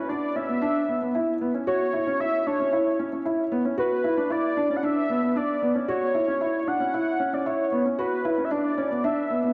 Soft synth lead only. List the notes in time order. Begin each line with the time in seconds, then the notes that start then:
Already playing: B4
0.09 D5
0.36 E5
1.67 C#5
2.20 E5
2.47 C#5
3.79 B4
4.31 D5
4.76 F#5
4.84 E5
5.37 D5
5.89 C#5
6.68 F#5
7.34 D5
7.46 C#5
7.99 B4
8.45 E5
8.51 D5
9.04 E5